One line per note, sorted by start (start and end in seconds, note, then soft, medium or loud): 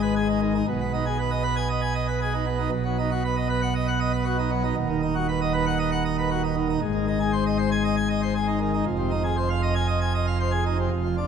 0.00 0.62 G#1 medium
0.00 0.62 G#2 medium
0.00 0.14 B4 medium
0.16 0.27 G#4 medium
0.29 0.40 D#4 medium
0.42 0.53 D#3 medium
0.55 0.65 D#4 medium
0.68 2.69 B1 medium
0.68 2.69 B2 medium
0.81 0.92 B3 medium
0.93 1.05 D#4 medium
1.06 1.17 G#4 medium
1.19 1.30 B4 medium
1.31 1.42 D#5 medium
1.43 1.55 B4 medium
1.56 1.68 G#5 medium
1.69 1.81 D#5 medium
1.82 1.93 G#5 medium
1.95 2.06 D#5 medium
2.08 2.19 B4 medium
2.21 2.33 G#4 medium
2.33 2.45 D#4 medium
2.46 2.58 B3 medium
2.59 2.70 D#4 medium
2.72 4.73 B1 medium
2.72 4.73 B2 medium
2.85 2.96 F#3 medium
2.99 3.10 D#4 medium
3.11 3.22 F#4 medium
3.24 3.35 B4 medium
3.36 3.48 D#5 medium
3.49 3.61 B4 medium
3.62 3.73 F#5 loud
3.75 3.86 D#5 medium
3.88 3.99 F#5 medium
4.00 4.12 D#5 medium
4.13 4.24 B4 medium
4.25 4.37 F#4 medium
4.38 4.50 D#4 medium
4.51 4.63 F#3 medium
4.64 4.75 D#4 medium
4.76 6.77 D#1 medium
4.76 6.77 D#2 medium
4.89 5.01 D#3 medium
5.02 5.14 D#4 medium
5.15 5.27 F#4 medium
5.29 5.40 B4 medium
5.41 5.52 D#5 medium
5.53 5.65 B4 medium
5.66 5.78 F#5 loud
5.79 5.90 D#5 medium
5.92 6.03 F#5 medium
6.05 6.16 D#5 medium
6.19 6.29 B4 medium
6.30 6.42 F#4 medium
6.44 6.55 D#4 medium
6.57 6.68 D#3 medium
6.69 6.80 D#4 medium
6.82 8.82 G#1 medium
6.82 8.82 G#2 medium
6.95 7.06 D#3 medium
7.07 7.18 D#4 medium
7.20 7.31 G#4 medium
7.33 7.44 C5 medium
7.47 7.57 D#5 medium
7.59 7.70 C5 medium
7.72 7.82 G#5 loud
7.84 7.95 D#5 medium
7.97 8.08 G#5 medium
8.10 8.21 D#5 medium
8.23 8.34 C5 medium
8.35 8.46 G#4 medium
8.47 8.59 D#4 medium
8.61 8.72 D#3 medium
8.74 8.84 D#4 medium
8.86 10.87 F1 medium
8.86 10.87 F2 medium
8.99 9.10 C3 medium
9.11 9.22 D#4 medium
9.24 9.35 G#4 medium
9.37 9.48 C5 medium
9.50 9.61 F5 medium
9.63 9.74 D#5 medium
9.75 9.87 G#5 loud
9.88 9.99 D#5 medium
10.01 10.12 G#5 medium
10.15 10.26 D#5 medium
10.27 10.38 F5 medium
10.40 10.51 C5 medium
10.51 10.63 G#4 medium
10.66 10.77 D#4 medium
10.79 10.89 C3 medium
10.91 11.27 F1 medium
10.91 11.27 F2 medium
11.04 11.16 F3 medium
11.18 11.27 D4 medium